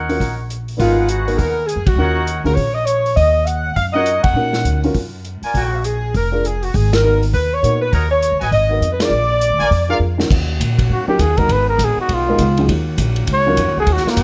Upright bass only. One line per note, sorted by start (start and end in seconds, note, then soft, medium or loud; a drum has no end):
0.00 0.17 D#2 medium
0.20 0.76 A#1 medium
0.79 1.36 G#1 medium
1.38 1.75 D#2 medium
1.76 1.85 F#2 medium
1.86 1.95 C#2 medium
1.95 2.41 D#2 medium
2.44 2.56 D2 medium
2.57 3.14 A#1 medium
3.16 3.73 D#2 medium
3.76 4.21 F#2 medium
4.24 4.33 F2 medium
4.34 4.62 A#2 medium
4.64 4.93 D2 medium
4.94 5.40 F#2 medium
5.42 muted upright bass stroke soft
5.54 6.11 A#1 medium
6.14 6.71 F1 medium
6.74 7.30 G#1 medium
7.33 7.61 D#2 medium
7.63 7.91 A#2 medium
7.92 8.29 D#2 medium
8.31 8.41 C#2 medium
8.41 8.51 A1 medium
8.52 8.79 G#1 medium
8.81 9.09 F2 medium
9.10 9.47 A#1 medium
9.50 9.59 D2 medium
9.59 9.69 A1 medium
9.71 9.98 F2 medium
9.99 10.27 F2 medium
10.30 10.59 D#2 medium
10.59 10.89 A#2 medium
10.89 11.06 F#2 medium
11.07 muted upright bass stroke soft
11.19 11.48 D#2 medium
11.49 11.78 G#1 medium
11.78 11.96 A#1 medium
11.96 muted upright bass stroke soft
12.09 12.38 B1 medium
12.39 12.67 C#2 medium
12.68 12.97 D#2 medium
12.98 13.27 A#1 medium
13.27 13.56 C#2 medium
13.57 13.67 F2 medium
13.67 13.76 D#2 medium
13.77 13.86 C#2 medium
13.86 14.03 D#2 medium
14.04 muted upright bass stroke soft
14.16 14.23 F#2 medium